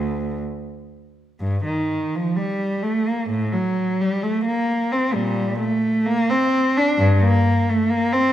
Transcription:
Already playing: D2
1.40 G2
1.65 D#3
2.15 F3
2.36 G3
2.83 A3
3.07 A#3
3.29 A2
3.52 F#3
4.01 G3
4.22 A3
4.45 A#3
4.92 C4
5.14 A#2 G3
5.59 A3
6.05 A#3
6.30 C4
6.77 D4
6.98 G2
7.22 A#3
7.69 A3
7.90 A#3
8.12 C4

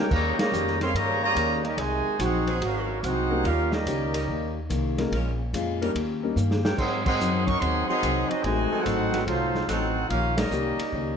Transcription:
0.00 D#4 A#4 C#5 G5
0.10 D#2 C#3 D#3 G3 A#3 C#4 G4 C#5 D#5 A#5, kick, crash
0.38 C#3 G3 A#3 G4 C#5 D#5 A#5, muted upright bass stroke, snare, ride
0.51 F2 D#3 A#3 C#4 G4, hi-hat pedal
0.67 snare
0.81 G3 C4 C#4 D#4 G#4 A#4 C#5 F5 C6, snare, ride
0.94 G2 C#3 D#3 G3 A#3 C#4 G4 C#5 D#5 A#5, kick, ride
1.23 C#3 G3 A#3 G4 C#5 D#5 A#5
1.35 D#2 D#3 G3 A#3 C#4 D#4 G4 A#4, kick, hi-hat pedal, ride
1.64 G3 A#3 C#4 D#4 G4 A#4 D#5, ride
1.77 C2 G#2 C3 D#3 F#3 G#3 C4 D#4 F#4 C5 D#5 G#5, kick, ride
2.07 muted upright bass stroke
2.18 A#1 G#2 F#3 C4 D#4 F#4, kick, hi-hat pedal, ride
2.24 D#4 G#4 C5 F#5
2.47 F#3 D#4 G#4 C5, ride
2.61 G#1 G#2 F#3 C4 C#4 D#4 F#4, kick, ride
2.65 F#4 A#4 F5
3.01 C2 G#2 C4 D#4 F#4 F5, kick, hi-hat pedal, ride
3.05 F#3 C4 D#4 G#4 C5 F#5
3.31 G3 A#3 C#4 D#4 A#4
3.43 D#2 D#3 G3 A#3 C#4 D#4 F4 A#4, kick, ride
3.47 G4 F5
3.72 G3 A#3 C#4 D#4 G4 A#4 D#5, snare
3.86 C#2 D#3 A#3 C#4 G4, kick, hi-hat pedal, ride
4.13 G3 C#4 D#4 A#4, ride
4.28 D#2 D#3 A#3 C#4 G4, kick
4.70 C2 D#3 A#3 C#4 G4, kick, hi-hat pedal, ride
4.98 G#3 A#3 C#4 F4 A#4, snare, ride
5.11 A#1 A#2 G#3 C#4 F4 A#4, kick, ride
5.53 F2 A#2 G#3 C#4 F4, kick, hi-hat pedal, ride
5.81 G3 A#3 C#4 D#4 A#4, ride
5.95 D#2 D#3 A#3 C#4 G4, kick, ride
6.23 G3 A#3 C#4 D#4 A#4
6.36 G2 D#3 A#3 C#4 G4, hi-hat pedal
6.51 snare
6.63 A#3 C#4 D#4 G4 A#4 C#5 G5, snare
6.77 G#2 D#3 F#3 C4 G#4 D#5 F#5 C6, kick, crash
6.81 C4 D#4
7.05 D#3 F#3 C4 G#4 D#5 F#5 C6, kick, crash
7.20 F#2 G#2 F#3 C4 D#4, hi-hat pedal
7.45 C#4 A#4 D#5 F#5 C#6, kick, ride
7.60 D#2 G#2 D#3 F#3 C4 G#4 D#5 F#5 C6, kick, ride
7.64 D#4
7.87 D#3 F#3 C4 D#4 G#4 D#5 F#5 C6, muted upright bass stroke
8.03 C2 G#2 F#3 C4 D#4, kick, hi-hat pedal, ride
8.29 F#3 C4 D#4 F#4 G#4 D#5, muted upright bass stroke, ride
8.42 A1 A2 C3 D#3 F#3 G#3 A3 C4 D#4 F#4 C5 D#5 G#5, kick, ride
8.46 D#4
8.72 F#3 C4 D#4 A4, muted upright bass stroke
8.81 A2 C4 D#4 F#4 A4 C5 F#5
8.86 G#1 F#3 C4 D#4, kick, hi-hat pedal, ride
9.13 F#3 C4 D#4 B4, snare, ride
9.25 C2 A2 F#3 C4 D#4 F4 A4 C5 F5, kick, ride
9.55 snare
9.67 A1 A2 F#3 C4 D#4 F#4 A4 C5 F#5, kick, hi-hat pedal, ride
10.09 A#1 D#3 A#3 C#4 F4 G4 A#4 F5, kick, ride
10.37 G3 A#3 C#4 D#4 G4 A#4 D#5, snare, ride
10.50 C2 D#3 A#3 C#4 G4, hi-hat pedal
10.78 muted upright bass stroke, ride
10.92 C#2 D#3 A#3 C#4 G4, kick

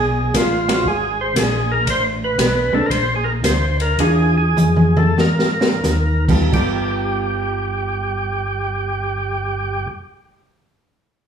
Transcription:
Already playing: B1 G#4
0.34 A1 F4, kick, snare, hi-hat pedal, ride
0.68 G#3 C4 F#4 A#4, ride
0.85 G#1 G#4, kick
1.21 C5
1.36 A#1 G#4, kick, snare, hi-hat pedal, ride
1.71 A#4
1.86 A1 C5, kick, ride
2.24 B4
2.38 B1, kick, snare, hi-hat pedal, ride
2.72 B1 G#3 C4 D4 A4
2.86 A#1 A#4
2.90 C5, kick, ride
3.16 G#4
3.24 A#4
3.43 D2 C5, kick, snare, hi-hat pedal, ride
3.80 A#4, ride
3.98 E2 E3 D4 F4 G#4, kick, ride
4.37 G#4
4.57 F2, hi-hat pedal, mid tom
4.76 mid tom
4.97 A4, mid tom
5.18 G#2 A#4, snare
5.39 snare
5.61 snare
5.83 D#2, snare, hi-hat pedal
6.29 G3 B3 F4 A4, kick, crash
6.52 G1 G3 B3 F4 G4 A4, kick, crash

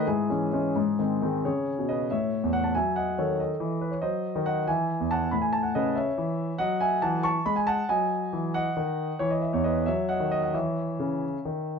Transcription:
0.07 G#2 E4 G#4
0.29 E3 G#3 C#4
0.53 E3 G#3 C#4
0.76 G#2
0.99 D#3 G#3 C4
1.22 D#3 G#3 C4
1.45 C#3 G#4 C#5
1.79 B2
1.89 B4 D#5
2.11 A2 C#5 E5
2.43 E2
2.53 F#5
2.64 A5
2.75 F#3 E5 G#5
2.96 D#5 F#5
3.18 D#3 A4 C#5
3.40 A4 D#5
3.60 E3
3.81 B4
3.91 C#5
4.02 F#3 C5 D#5
4.36 D#3
4.46 D#5 F#5
4.67 E3 E5 G#5
5.00 E2
5.11 F#5 A5
5.31 A2 B5
5.41 G#5
5.53 A5
5.63 F#5
5.75 C#3 B4 D#5
5.95 C#5 E5
6.18 E3
6.58 F#3 D#5 F#5
6.80 E5 G#5
7.02 E3 F#5 A5
7.23 A5 C#6
7.46 G#3 B5
7.56 G#5
7.67 F#5 A5
7.89 F#3 D#5 G#5
8.33 E3
8.54 D#5 F#5
8.77 D#3
9.19 E3 C#5
9.30 D#5
9.41 E5
9.53 E2 C#5
9.64 B4 D#5
9.86 F#3 C#5 E5
10.09 D#5 F#5
10.20 D#3
10.31 D#5
10.43 F#5
10.54 E3 C#5 E5
10.99 C#3
11.45 D#3

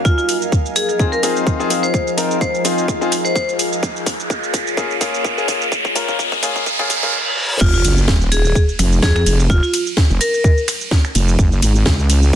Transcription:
Already playing: A#4 D#5 F5 G#5
0.05 F3 F4 G#4, kick, riser, shaker
0.18 F4, shaker
0.29 open hi-hat, shaker
0.42 shaker
0.52 kick, shaker
0.66 shaker
0.76 G#4, open hi-hat, shaker
0.89 G#4, shaker
0.99 C4 D#4 F4 G#4, kick, shaker
1.12 A#4, shaker
1.23 C4 D#4 F4 G#4, open hi-hat, shaker
1.36 shaker
1.47 kick, shaker
1.60 C4 D#4 F4 G#4, shaker
1.70 C4 D#4 F4 G#4, open hi-hat, shaker
1.83 C5, shaker
1.94 C5, kick, shaker
2.07 shaker
2.17 C4 D#4 F4 A#4, open hi-hat, shaker
2.31 shaker
2.41 C5, kick, shaker
2.55 shaker
2.65 C4 D#4 F4 G#4, open hi-hat, shaker
2.78 shaker
2.88 kick, shaker
3.01 C4 D#4 F4 G#4, shaker
3.12 open hi-hat, shaker
3.25 C5, shaker
3.36 C5, kick, shaker
3.49 shaker
3.59 open hi-hat, shaker
3.73 shaker
3.83 A#3 F4 G#4 C#5, kick, shaker
3.96 shaker
4.06 kick, open hi-hat, shaker
4.20 shaker
4.30 kick, shaker
4.43 shaker
4.54 kick, open hi-hat, shaker
4.67 shaker
4.77 A#3 C#4 F4 G#4, kick, shaker
4.91 shaker
5.01 A#3 C#4 F4 G#4, kick, open hi-hat, shaker
5.14 shaker
5.25 kick, shaker
5.38 A#3 C#4 F4 G#4, shaker
5.48 A#3 F4 G#4, kick, open hi-hat, shaker
5.62 shaker
5.72 kick, shaker
5.85 kick, shaker
5.95 A#3 C#4 F4 A#4, kick, open hi-hat, shaker
6.08 kick, shaker
6.19 kick, shaker
6.32 kick, shaker
6.43 A#3 C#4 F4 G#4, kick, open hi-hat, shaker
6.56 kick, shaker
6.66 kick, reverse cymbal, shaker
6.79 A#3 C#4 F4 G#4, kick, shaker
6.90 kick, open hi-hat, shaker
7.03 A#3 C#4 F4 G#4, kick, shaker
7.61 F1 D#4 F4 G#4, kick, crash, sub drop, shaker
7.74 F4, shaker
7.84 F#1, open hi-hat, ride, shaker
7.98 shaker
8.08 D#1, kick, snare, shaker
8.21 shaker
8.32 G#4, open hi-hat, ride, shaker
8.45 G#4, shaker
8.55 kick, shaker
8.69 shaker
8.79 F1, finger snap, open hi-hat, ride, shaker
8.92 shaker
9.03 F2 G#4, kick, snare, shaker
9.16 G#4, finger snap, shaker
9.26 F1, open hi-hat, ride, shaker
9.40 shaker
9.50 F4, kick, shaker
9.63 F4, shaker
9.74 open hi-hat, ride, shaker
9.87 shaker
9.97 kick, snare, shaker
10.10 F1, shaker
10.21 A#4, open hi-hat, ride, shaker
10.34 shaker
10.44 kick, shaker
10.58 shaker
10.68 finger snap, open hi-hat, ride, shaker
10.81 shaker
10.91 kick, snare, shaker
11.05 finger snap, shaker
11.15 F1, open hi-hat, ride, shaker
11.28 shaker
11.39 F#1, kick, shaker
11.52 shaker
11.62 G#1, open hi-hat, ride, shaker
11.76 shaker
11.86 C#2, kick, snare, shaker
11.99 shaker
12.10 open hi-hat, ride, shaker
12.23 shaker

